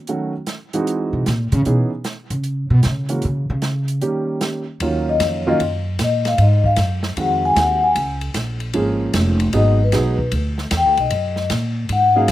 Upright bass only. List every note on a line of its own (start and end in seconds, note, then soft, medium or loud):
1.13 1.26 C3 medium
1.27 1.52 A#2 medium
1.52 1.66 C#3 loud
1.66 1.82 B2 medium
2.30 2.67 C#3 medium
2.70 2.84 B2 loud
2.86 3.22 C#3 medium
3.25 3.49 C#3 medium
3.50 3.99 C#3 medium
4.80 5.19 D#2 medium
5.20 5.58 F2 medium
5.60 5.98 F#2 medium
5.99 6.37 A#2 loud
6.38 6.77 G#2 medium
6.77 7.16 F#2 medium
7.17 7.55 F2 medium
7.56 7.95 D#2 loud
7.95 8.34 C#2 medium
8.34 8.73 A#1 medium
8.74 9.13 G#1 medium
9.14 9.52 F1 loud
9.53 9.92 G#1 medium
9.93 10.31 B1 medium
10.32 10.71 D2 medium
10.72 10.85 E2 loud
10.85 10.97 D2 medium
10.98 11.10 B1 medium
11.10 11.49 F#2 medium
11.50 11.89 A#2 medium
11.89 12.28 G#2 medium
12.28 12.32 F#2 loud